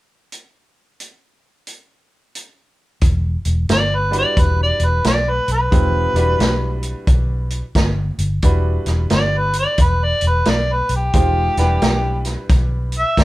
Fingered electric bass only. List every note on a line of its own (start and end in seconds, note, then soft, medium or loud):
3.02 3.36 E1 medium
3.46 3.65 E1 medium
3.69 4.23 G1 medium
4.37 4.71 E1 medium
4.80 4.99 E1 medium
5.05 5.39 B1 medium
5.48 5.67 B1 medium
5.72 6.06 E1 medium
6.14 6.34 E1 medium
6.39 6.93 B1 medium
7.07 7.61 B1 medium
7.75 8.09 G1 medium
8.18 8.38 G1 medium
8.43 8.77 E1 medium
8.86 9.06 E1 medium
9.11 9.65 G1 medium
9.78 10.12 E1 medium
10.22 10.41 E1 medium
10.47 10.81 B1 medium
10.89 11.09 B1 medium
11.14 11.48 E1 medium
11.57 11.77 E1 medium
11.82 12.35 B1 medium
12.50 13.03 B1 medium
13.17 13.24 G1 medium